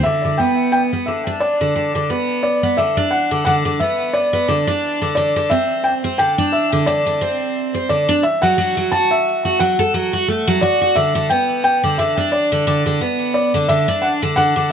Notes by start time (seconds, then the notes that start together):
0.03 D3 E5
0.25 D3
0.38 B3 G5
0.72 G5
0.93 B3
1.06 D3 E5
1.27 D4
1.40 D5
1.61 D3
1.76 D3
1.95 D3
2.10 B3
2.43 D5
2.63 B3
2.77 D3 E5
2.97 D4
3.11 F#5
3.31 D3
3.45 D3 F#5
3.65 D3
3.80 B3 E5
4.13 D5
4.33 B3
4.48 D3
4.67 D4
5.02 D3
5.15 D3 D5
5.36 D3
5.50 C4 E5
5.84 G5
6.04 C4
6.18 D3 G5
6.38 D4
6.52 E5
6.72 D3
6.86 D3 D5
7.06 D3
7.21 C4
7.74 C4
7.89 D3 D5
8.09 D4
8.23 E5
8.42 F#3 F#5
8.58 F#3
8.77 F#3
8.92 F#4 A5
9.11 E5
9.45 F#4
9.60 F#3 F#5
9.79 A4
9.94 F#3
10.13 F#4
10.28 A3
10.47 F#3
10.61 F#4 D5
10.81 F#4
10.95 D3 E5
11.15 D3
11.30 B3 G5
11.64 G5
11.83 D3
11.98 D3 E5
12.17 D4
12.32 D5
12.52 D3
12.67 D3
12.86 D3
13.01 B3
13.34 D5
13.54 D3
13.68 D3 E5
13.88 D4
14.02 F#5
14.22 D3
14.36 D3 F#5
14.56 D3